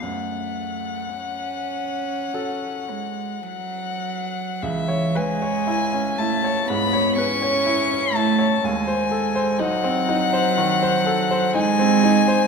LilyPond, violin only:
\new Staff \with { instrumentName = "Violin" } { \time 4/4 \key fis \minor \tempo 4 = 61 fis''2. fis''4 | \key cis \minor e''8 gis''4 a''8 b''8 cis'''4 a''8 | gis''4 fis''2 gis''4 | }